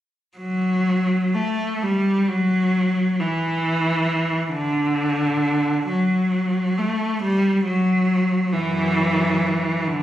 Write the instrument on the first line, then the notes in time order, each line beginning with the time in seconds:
cello
0.37 F#3
1.34 A3
1.83 G3
2.29 F#3
3.20 E3
4.53 D3
5.88 F#3
6.78 A3
7.22 G3
7.65 F#3
8.52 F#2 E3
9.86 D3